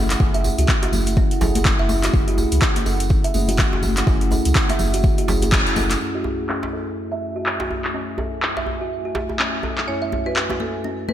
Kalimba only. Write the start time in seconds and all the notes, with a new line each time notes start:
0.34 E5
0.58 F#4
0.83 F#4
1.17 C#4
1.41 A4
1.79 E5
2.03 F#4
2.28 F#4
2.62 C#4
2.86 A4
3.24 E5
3.48 F#4
3.73 F#4
4.07 C#4
4.31 A4
4.69 E5
4.94 F#4
5.18 F#4
5.52 C#4
5.76 A4
6.15 F#4
6.49 C#4
6.73 A4
7.12 E5
7.36 F#4
7.60 F#4
7.94 C#4
8.19 A4
8.57 E5
8.81 F#4
9.05 F#4
9.39 C#4
9.64 A4
10.02 E5
10.26 F#4
10.50 F#4
10.84 C#4
11.09 A4